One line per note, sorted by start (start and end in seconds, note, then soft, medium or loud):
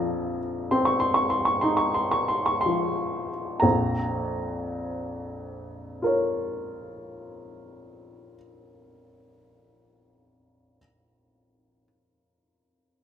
0.00 3.59 A#1 soft
0.00 0.38 F2 soft
0.00 1.25 F3 soft
0.00 0.70 A5 medium
0.00 3.60 A#5 medium
0.71 2.24 C4 soft
0.71 0.86 C6 soft
0.85 1.00 C#6 soft
1.00 1.15 C6 soft
1.14 1.30 C#6 soft
1.30 1.46 C6 soft
1.45 1.62 C#6 soft
1.61 3.29 D#4 soft
1.61 1.78 C6 soft
1.77 1.94 C#6 soft
1.94 2.12 C6 soft
2.11 2.29 C#6 soft
2.28 2.47 C6 soft
2.46 2.65 C#6 soft
2.61 3.61 C6 soft
2.66 3.62 F3 soft
3.60 8.36 A#1 soft
3.60 8.36 F2 soft
3.60 8.34 A#5 soft
6.02 10.76 F4 soft
6.02 10.78 A#4 soft
6.02 10.80 C#5 soft